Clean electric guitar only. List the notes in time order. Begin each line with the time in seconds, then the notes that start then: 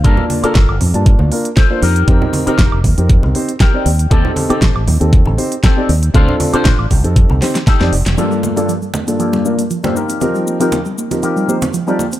0.04 F4 A4 A#4
0.43 F4 A4 A#4
1.05 muted clean electric guitar stroke
1.19 muted clean electric guitar stroke
1.31 muted clean electric guitar stroke
1.56 F4 A4 C5
1.82 D#4 G4 A#4
2.46 D#4 G4 A#4
3.09 muted clean electric guitar stroke
3.22 muted clean electric guitar stroke
3.34 muted clean electric guitar stroke
3.60 D#4 G4 A#4 G5
4.11 C4 G4 A4
4.50 C4 G4 A4
5.12 muted clean electric guitar stroke
5.26 muted clean electric guitar stroke
5.38 muted clean electric guitar stroke
5.63 C4 G4 A4
6.14 D4 F4 C5
6.53 D4 F4 C5
7.16 muted clean electric guitar stroke
7.29 muted clean electric guitar stroke
7.41 muted clean electric guitar stroke
7.67 D#4 G4 A4
8.17 A#3 F4 G4 A4
8.43 muted clean electric guitar stroke
8.56 A#3 F4 G4 A4
8.93 muted clean electric guitar stroke
9.19 A#3 F4 G4 A4
9.83 A#3 F4 G4 A4
9.95 D#4 F4 G4 A#4
10.46 muted clean electric guitar stroke
10.60 D#4 F4 G4 A#4
10.97 muted clean electric guitar stroke
11.22 D#4 F4 G4 A#4
11.87 D#4 F4 G4 A4